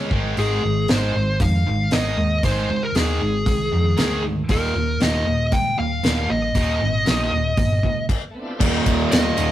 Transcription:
0.00 0.10 C#4 medium
0.10 0.33 G#1 medium
0.10 0.35 G#2 medium
0.10 0.36 D#3 medium
0.10 0.36 G#3 medium
0.10 kick medium
0.37 0.59 G#1 medium
0.37 0.61 G#2 medium
0.37 0.62 D#3 medium
0.37 0.62 G#3 medium
0.37 0.91 G#4 medium
0.37 open hi-hat soft
0.63 0.85 G#1 medium
0.63 0.86 G#2 medium
0.63 0.86 D#3 medium
0.88 1.11 G#1 medium
0.88 1.13 G#2 medium
0.88 1.13 D#3 medium
0.88 1.14 G#3 medium
0.88 1.43 C5 medium
0.88 snare loud
0.88 open hi-hat soft
1.14 1.37 G#1 medium
1.14 1.38 G#2 medium
1.14 1.38 D#3 medium
1.40 1.62 F2 medium
1.40 1.64 G#2 medium
1.40 1.64 D#3 medium
1.40 1.94 F5 medium
1.40 kick loud
1.40 open hi-hat soft
1.67 1.88 G#1 medium
1.67 1.90 G#2 medium
1.67 1.90 D#3 medium
1.91 2.14 G#1 medium
1.91 2.16 G#2 medium
1.91 2.16 D#3 medium
1.91 2.17 G#3 medium
1.91 2.44 D#5 medium
1.91 snare medium
1.91 open hi-hat soft
2.17 2.39 D#2 medium
2.17 2.41 G#2 medium
2.17 2.41 D#3 medium
2.43 2.65 G#1 medium
2.43 2.68 G#2 medium
2.43 2.68 D#3 medium
2.43 2.69 G#3 medium
2.43 2.84 C5 medium
2.43 kick medium
2.43 open hi-hat soft
2.69 2.91 C#2 medium
2.69 2.93 G#2 medium
2.69 2.93 D#3 medium
2.83 2.95 A#4 medium
2.95 3.17 D#2 medium
2.95 3.19 G#2 medium
2.95 3.20 D#3 medium
2.95 3.20 G#3 medium
2.95 4.24 G#4 medium
2.95 snare medium
2.95 open hi-hat soft
3.21 3.43 G#1 medium
3.21 3.44 G#2 medium
3.21 3.45 D#3 medium
3.46 3.68 C2 medium
3.46 3.70 G#2 medium
3.46 3.70 D#3 medium
3.46 kick loud
3.46 open hi-hat soft
3.72 3.94 F2 medium
3.72 3.95 G#2 medium
3.72 3.96 D#3 medium
3.97 4.42 D2 medium
3.97 4.22 G#2 medium
3.97 4.22 D#3 medium
3.97 4.22 G#3 medium
3.97 snare loud
3.97 open hi-hat soft
4.23 4.47 G#2 medium
4.23 4.47 D#3 medium
4.49 4.71 D#1 medium
4.49 4.73 D#2 medium
4.49 4.74 A#2 medium
4.49 4.74 D#3 medium
4.49 5.03 A#4 medium
4.49 kick loud
4.49 open hi-hat soft
4.75 4.97 D#1 medium
4.75 4.98 D#2 medium
4.75 4.98 A#2 medium
5.00 5.23 D#1 medium
5.00 5.25 D#2 medium
5.00 5.25 A#2 medium
5.00 5.25 D#3 medium
5.00 5.55 D#5 medium
5.00 snare medium
5.00 open hi-hat soft
5.26 5.48 D#1 medium
5.26 5.50 D#2 medium
5.26 5.50 A#2 medium
5.52 5.74 C#2 medium
5.52 5.75 D#2 medium
5.52 5.76 A#2 medium
5.52 5.78 G5 loud
5.52 kick loud
5.52 open hi-hat soft
5.77 5.99 D#1 medium
5.77 6.01 D#2 medium
5.77 6.02 A#2 medium
5.77 6.31 F5 medium
6.04 6.26 D#1 medium
6.04 6.28 D#2 medium
6.04 6.29 A#2 medium
6.04 6.29 D#3 medium
6.04 snare medium
6.04 open hi-hat soft
6.29 6.51 A#1 medium
6.29 6.53 D#2 medium
6.29 6.53 A#2 medium
6.29 8.06 D#5 medium
6.55 6.77 D#1 medium
6.55 6.79 D#2 medium
6.55 6.80 A#2 medium
6.55 6.80 D#3 medium
6.55 kick medium
6.55 open hi-hat soft
6.81 7.03 G#1 medium
6.81 7.04 D#2 medium
6.81 7.05 A#2 medium
7.06 7.29 A#1 medium
7.06 7.30 D#2 medium
7.06 7.31 A#2 medium
7.06 7.31 D#3 medium
7.06 snare loud
7.06 open hi-hat soft
7.33 7.54 D#1 medium
7.33 7.56 D#2 medium
7.33 7.56 A#2 medium
7.57 7.80 G1 medium
7.57 7.81 D#2 medium
7.57 7.81 A#2 medium
7.57 kick loud
7.57 open hi-hat medium
7.83 8.05 C#2 medium
7.83 8.07 D#2 medium
7.83 8.07 A#2 medium
7.83 kick medium
8.09 kick medium
8.09 crash medium
8.31 8.52 A3 medium
8.31 8.53 B3 medium
8.36 8.54 C4 medium
8.36 8.56 D4 medium
8.42 8.57 E4 medium
8.42 8.59 F4 medium
8.48 8.60 G4 medium
8.48 8.62 A4 medium
8.53 8.63 B4 medium
8.53 8.64 C5 medium
8.59 8.77 D#1 medium
8.59 9.38 D#2 medium
8.59 9.36 A#2 medium
8.59 9.52 A#3 medium
8.59 9.52 D#4 medium
8.59 9.52 G4 medium
8.59 8.66 D5 medium
8.59 9.52 D#5 medium
8.59 kick loud
8.59 crash loud
8.59 tambourine soft
8.63 9.35 D#3 loud
8.86 9.02 D#1 medium
8.86 kick medium
8.86 ride medium
8.86 tambourine medium
8.99 tambourine soft
9.12 9.28 D#1 medium
9.12 9.52 D#5 medium
9.12 snare loud
9.12 ride loud
9.12 tambourine loud
9.36 9.52 D#1 medium
9.36 9.52 D#2 medium
9.36 9.52 A#2 medium
9.36 9.52 D#3 medium
9.36 ride medium
9.36 tambourine medium

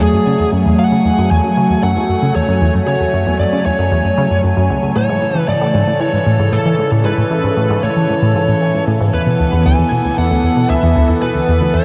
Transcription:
0.00 0.09 E2 loud
0.00 4.92 F#3 medium
0.00 4.92 A3 medium
0.00 0.49 G#4 medium
0.00 4.92 G#5 medium
0.13 0.19 F#2 medium
0.27 0.35 C#3 medium
0.40 0.45 E2 medium
0.53 0.65 F#2 loud
0.66 0.75 E2 loud
0.79 0.84 F#2 medium
0.79 1.31 F#5 loud
0.92 1.01 C#3 medium
1.05 1.10 E2 medium
1.18 1.30 F#2 loud
1.31 1.40 E2 loud
1.31 1.83 G#5 loud
1.44 1.49 F#2 medium
1.57 1.66 C#3 medium
1.70 1.76 E2 medium
1.83 1.96 F#2 loud
1.83 2.32 F#5 loud
1.96 2.05 E2 loud
2.09 2.15 F#2 medium
2.22 2.31 C#3 medium
2.35 2.41 E2 medium
2.35 2.72 C#5 medium
2.49 2.61 F#2 loud
2.62 2.70 E2 loud
2.75 2.80 F#2 medium
2.88 2.96 C#3 medium
2.88 3.36 C#5 medium
3.01 3.06 E2 medium
3.14 3.26 F#2 medium
3.27 3.36 E2 loud
3.39 3.45 F#2 medium
3.39 3.66 D5 medium
3.53 3.62 C#3 medium
3.66 3.71 E2 medium
3.66 4.40 C#5 medium
3.79 3.91 F#2 medium
3.92 4.01 E2 loud
4.05 4.10 F#2 medium
4.18 4.27 C#3 loud
4.31 4.40 F#2 medium
4.44 4.53 F#2 medium
4.57 4.69 F#2 loud
4.70 4.79 C#2 loud
4.83 4.92 C#2 loud
4.96 5.08 A2 loud
4.96 9.10 C#3 medium
4.96 11.85 E3 medium
4.96 9.10 A4 medium
4.96 5.48 C#5 loud
5.09 5.18 G#2 loud
5.22 5.28 A2 medium
5.35 5.44 E3 medium
5.48 5.54 G#2 medium
5.48 6.00 D5 loud
5.61 5.74 A2 loud
5.74 5.83 G#2 loud
5.87 5.93 A2 medium
6.00 6.09 E3 medium
6.00 6.54 C#5 loud
6.13 6.19 G#2 medium
6.26 6.39 A2 loud
6.40 6.48 G#2 loud
6.53 6.58 A2 medium
6.53 6.89 A4 medium
6.66 6.75 E3 medium
6.79 6.84 G#2 medium
6.92 7.04 A2 loud
7.05 7.14 G#2 loud
7.05 7.86 B4 medium
7.18 7.23 A2 medium
7.31 7.40 E3 medium
7.44 7.49 G#2 medium
7.57 7.69 A2 loud
7.70 7.79 G#2 loud
7.83 7.88 A2 medium
7.83 8.83 C#5 medium
7.96 8.05 E3 medium
8.09 8.15 G#2 medium
8.22 8.35 A2 loud
8.35 8.44 G#2 loud
8.48 8.54 A2 medium
8.61 8.70 E3 medium
8.74 8.80 G#2 medium
8.87 9.00 A2 loud
9.01 9.09 G#2 loud
9.14 9.19 E2 medium
9.14 11.85 B3 medium
9.14 11.85 A4 medium
9.14 9.67 B4 loud
9.27 9.36 B2 medium
9.40 9.45 D2 medium
9.53 9.65 E2 loud
9.66 9.75 D2 loud
9.66 10.18 G#5 loud
9.79 9.84 E2 medium
9.92 10.01 B2 medium
10.05 10.10 D2 medium
10.18 10.30 E2 loud
10.18 10.72 F#5 loud
10.31 10.40 D2 loud
10.44 10.49 E2 medium
10.57 10.66 B2 medium
10.70 10.75 D2 medium
10.70 11.06 E5 loud
10.83 10.95 E2 loud
10.96 11.05 D2 loud
11.09 11.15 E2 medium
11.22 11.31 B2 medium
11.22 11.76 B4 medium
11.35 11.41 D2 medium
11.48 11.61 E2 loud
11.61 11.70 D2 loud
11.74 11.80 E2 medium
11.74 11.85 C#5 medium

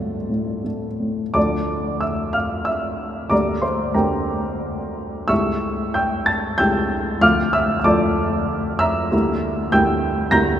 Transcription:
0.00 1.30 D2 soft
0.00 0.30 G2 soft
0.00 0.15 A2 soft
0.00 0.61 F4 soft
0.00 0.61 A4 soft
0.00 0.64 D5 medium
0.29 0.86 A2 soft
0.64 1.22 A3 soft
1.00 1.35 A2 soft
1.34 3.27 D2 soft
1.34 3.27 F3 soft
1.34 3.27 A3 soft
1.34 3.27 D4 soft
1.34 1.98 D5 medium
1.34 1.98 A5 soft
1.34 2.01 D6 medium
2.01 2.32 E5 soft
2.01 2.34 E6 medium
2.33 2.65 F5 soft
2.33 2.66 F6 medium
2.65 3.27 E5 medium
2.65 3.30 E6 medium
3.30 3.93 D2 soft
3.30 3.93 G3 soft
3.30 3.94 A#3 soft
3.30 3.94 D4 soft
3.30 3.62 D5 medium
3.30 3.61 A#5 medium
3.30 3.63 D6 medium
3.62 3.93 C5 soft
3.62 3.95 C6 medium
3.94 5.25 D2 soft
3.94 5.25 G3 soft
3.94 5.26 A#3 soft
3.94 5.26 D4 soft
3.94 5.26 A#4 soft
3.94 5.26 G5 medium
3.94 5.29 A#5 medium
5.28 6.55 C#2 soft
5.28 6.55 G3 soft
5.28 6.56 A3 soft
5.28 6.56 E4 soft
5.28 5.92 E5 medium
5.28 5.92 C#6 medium
5.28 5.94 E6 medium
5.94 6.26 G5 medium
5.94 6.25 E6 medium
5.94 6.27 G6 medium
6.26 6.57 A5 medium
6.26 6.59 A6 medium
6.58 7.20 C#2 soft
6.58 7.20 G3 soft
6.58 7.20 A3 soft
6.58 7.20 E4 soft
6.58 7.18 G5 medium
6.58 7.18 E6 medium
6.58 7.21 G6 medium
7.21 7.83 D2 medium
7.21 7.84 F3 soft
7.21 7.84 A3 soft
7.21 7.84 F4 soft
7.21 7.52 F5 medium
7.21 7.52 D6 medium
7.21 7.54 F6 medium
7.53 7.77 E5 medium
7.53 7.78 E6 medium
7.79 7.86 E6 medium
7.84 9.08 D2 soft
7.84 9.08 F3 soft
7.84 9.08 A3 soft
7.84 9.08 F4 soft
7.84 8.77 D5 medium
7.84 8.77 A5 medium
7.84 8.80 D6 medium
8.79 9.69 E5 medium
8.79 9.69 A#5 medium
8.79 9.71 E6 medium
9.12 9.71 D2 medium
9.12 9.71 G3 soft
9.12 9.72 A#3 soft
9.12 9.72 E4 soft
9.72 10.30 D2 medium
9.72 10.31 G3 soft
9.72 10.31 A#3 soft
9.72 10.31 E4 soft
9.72 10.29 G5 medium
9.72 10.30 E6 medium
9.72 10.31 G6 medium
10.31 10.60 D2 medium
10.31 10.60 G3 soft
10.31 10.60 A#3 soft
10.31 10.60 E4 soft
10.31 10.60 A#5 medium
10.31 10.60 G6 medium
10.31 10.60 A#6 loud

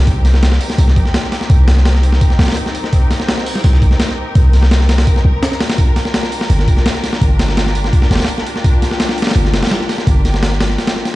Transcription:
0.00 0.59 C2 medium
0.00 5.74 G4 medium
0.07 5.75 C4 medium
0.07 5.75 D#4 medium
0.07 11.15 A#4 medium
0.07 kick loud
0.07 open hi-hat medium
0.25 snare soft
0.25 open hi-hat medium
0.34 snare soft
0.43 snare loud
0.43 open hi-hat medium
0.52 snare medium
0.61 open hi-hat medium
0.70 snare medium
0.78 0.98 C2 medium
0.78 open hi-hat medium
0.88 snare soft
0.96 1.05 A#1 medium
0.96 kick medium
0.96 open hi-hat medium
1.05 snare soft
1.14 snare loud
1.14 open hi-hat medium
1.23 snare soft
1.32 snare soft
1.32 open hi-hat medium
1.41 snare medium
1.50 2.20 C2 medium
1.50 kick loud
1.50 open hi-hat medium
1.68 snare loud
1.68 open hi-hat medium
1.77 snare soft
1.85 snare loud
1.85 open hi-hat medium
1.95 snare soft
2.03 open hi-hat medium
2.13 snare soft
2.21 kick loud
2.21 open hi-hat medium
2.30 snare soft
2.39 2.47 C2 medium
2.39 snare medium
2.39 open hi-hat medium
2.44 snare medium
2.44 open hi-hat medium
2.48 snare medium
2.48 open hi-hat medium
2.52 snare medium
2.52 open hi-hat medium
2.57 open hi-hat medium
2.66 snare soft
2.75 open hi-hat medium
2.84 snare soft
2.93 kick loud
2.93 open hi-hat medium
3.11 snare soft
3.11 open hi-hat medium
3.20 snare soft
3.28 snare loud
3.28 open hi-hat medium
3.38 snare medium
3.46 open hi-hat medium
3.55 snare medium
3.64 3.83 C2 loud
3.64 open hi-hat medium
3.73 snare soft
3.82 3.90 A#1 medium
3.82 kick medium
3.82 open hi-hat medium
3.91 snare soft
4.00 snare loud
4.00 open hi-hat medium
4.09 snare soft
4.35 5.06 C2 medium
4.35 kick loud
4.35 open hi-hat medium
4.53 snare soft
4.53 open hi-hat medium
4.63 snare soft
4.71 snare loud
4.71 open hi-hat medium
4.80 snare soft
4.89 snare loud
4.89 open hi-hat medium
4.98 snare loud
4.98 open hi-hat medium
5.07 kick loud
5.07 open hi-hat medium
5.16 snare soft
5.25 5.33 C2 medium
5.43 snare loud
5.43 open hi-hat medium
5.52 snare soft
5.61 snare loud
5.61 open hi-hat medium
5.70 snare loud
5.70 open hi-hat medium
5.78 11.15 D4 medium
5.78 11.15 F4 medium
5.78 11.15 G4 medium
5.78 kick loud
5.78 open hi-hat medium
5.96 snare soft
5.96 open hi-hat medium
6.05 snare soft
6.14 snare loud
6.14 open hi-hat medium
6.23 snare medium
6.32 open hi-hat medium
6.41 snare medium
6.50 6.69 G1 loud
6.50 open hi-hat medium
6.59 snare soft
6.68 6.76 F1 medium
6.68 kick medium
6.68 open hi-hat medium
6.77 snare soft
6.86 snare loud
6.86 open hi-hat medium
6.95 snare soft
7.04 snare medium
7.04 open hi-hat medium
7.13 snare medium
7.21 7.91 G1 medium
7.21 kick loud
7.21 open hi-hat medium
7.39 snare loud
7.39 open hi-hat medium
7.48 snare medium
7.57 snare loud
7.57 open hi-hat medium
7.66 snare soft
7.75 open hi-hat medium
7.84 snare soft
7.93 kick loud
7.93 open hi-hat medium
8.02 snare soft
8.11 8.19 G1 medium
8.11 snare medium
8.11 open hi-hat medium
8.15 snare medium
8.15 open hi-hat medium
8.20 snare medium
8.20 open hi-hat medium
8.24 snare medium
8.24 open hi-hat medium
8.29 open hi-hat medium
8.38 snare soft
8.47 open hi-hat medium
8.56 snare soft
8.64 kick loud
8.64 open hi-hat medium
8.82 snare soft
8.82 open hi-hat medium
8.91 snare soft
9.00 snare loud
9.00 open hi-hat medium
9.09 snare medium
9.18 open hi-hat medium
9.22 snare medium
9.22 open hi-hat medium
9.27 snare medium
9.27 open hi-hat medium
9.31 snare medium
9.31 open hi-hat medium
9.36 9.55 G1 medium
9.36 open hi-hat medium
9.45 snare soft
9.53 9.62 F1 medium
9.53 snare loud
9.53 open hi-hat medium
9.63 snare medium
9.63 open hi-hat medium
9.67 snare medium
9.67 open hi-hat medium
9.71 snare loud
9.71 open hi-hat medium
9.81 snare soft
9.89 snare soft
9.89 open hi-hat medium
9.98 snare medium
10.07 10.77 G1 medium
10.07 kick loud
10.07 open hi-hat medium
10.25 snare soft
10.25 open hi-hat medium
10.34 snare medium
10.43 snare loud
10.43 open hi-hat medium
10.52 snare soft
10.60 snare loud
10.60 open hi-hat medium
10.70 snare soft
10.78 snare soft
10.78 open hi-hat medium
10.87 snare loud
10.87 open hi-hat medium
10.96 snare soft
11.05 snare soft
11.05 open hi-hat medium

